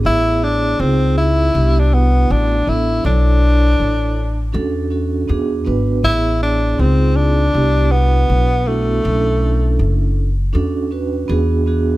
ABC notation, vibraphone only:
X:1
M:4/4
L:1/16
Q:"Swing 16ths" 1/4=80
K:Bdor
V:1 name="Vibraphone"
[B,EGc]4 [^B,^D^EG]4 [=B,=D=E=G]2 [B,DEF]3 z [B,DEA]2 | [DEAc]6 z2 [CDFA]2 [CDFA]2 [B,DFG]2 [B,DFB]2 | [Gc]4 [^B,^D^EG]4 [=B,=D=E=G]2 [B,DEF]3 z [B,DEF]2 | [CDEA]6 z2 [CDFA]2 [CDFB]2 [B,DFG]2 [B,DFG]2 |]